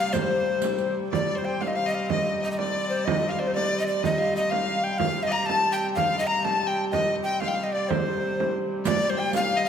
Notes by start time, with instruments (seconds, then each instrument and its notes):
Already playing: hurdy-gurdy C3 G3
0.00 fiddle F5, recorder F5
0.13 fiddle C5, recorder C5, riq, frame drum
0.32 frame drum
0.62 riq, frame drum
0.78 riq, frame drum
0.97 frame drum
1.11 hurdy-gurdy C3 G3, fiddle D5, recorder D5, frame drum
1.35 fiddle C5, recorder C5
1.45 recorder G5
1.61 fiddle F5, recorder F5, frame drum
1.67 recorder D#5
1.74 fiddle F5, recorder F5, frame drum
1.86 fiddle D#5, recorder D#5
1.95 recorder F5
2.10 recorder D#5, fiddle D#5, frame drum
2.42 fiddle D#5, recorder D#5
2.51 recorder D#5
2.57 recorder D5, fiddle D5, frame drum
2.75 frame drum
2.89 recorder C5
3.05 recorder D#5, fiddle D#5, frame drum
3.29 recorder F5, fiddle F5
3.39 fiddle C5, recorder D5
3.47 recorder C5
3.55 recorder D5, fiddle D5, frame drum
3.72 frame drum
3.79 fiddle D#5, recorder D#5
3.88 recorder D5, fiddle D5
4.03 fiddle D#5, recorder D#5, frame drum
4.19 fiddle F5
4.35 fiddle D#5, recorder D#5, frame drum
4.50 fiddle F5, recorder F5, frame drum
4.68 frame drum
4.84 recorder G5
4.98 hurdy-gurdy C3 G3, recorder F5, fiddle F5, frame drum
5.23 recorder D#5, fiddle D#5
5.27 fiddle D5
5.32 fiddle A#5, recorder A#5
5.46 recorder A5, fiddle A5, frame drum
5.65 frame drum
5.72 recorder G5, fiddle G5
5.95 recorder F5, fiddle F5, frame drum
6.19 recorder D#5, fiddle D#5
6.27 fiddle A#5, recorder A#5
6.44 fiddle A5, recorder A5, frame drum
6.62 frame drum
6.67 fiddle G5, recorder G5
6.92 recorder D#5, fiddle D#5, frame drum
7.23 recorder G5, fiddle G5
7.40 recorder F5, fiddle F5, frame drum
7.48 fiddle G5
7.55 fiddle F5, frame drum
7.64 recorder D#5
7.72 recorder D5, fiddle D5
7.89 recorder C5, fiddle C5, frame drum
8.24 frame drum
8.40 frame drum
8.56 frame drum
8.85 hurdy-gurdy C3 G3, fiddle D5, recorder D5, riq, frame drum
9.02 riq
9.10 recorder C5, fiddle C5
9.17 fiddle G5, recorder G5
9.33 fiddle F5, recorder F5, riq, frame drum
9.51 frame drum
9.57 fiddle D#5, recorder D#5
9.65 fiddle F5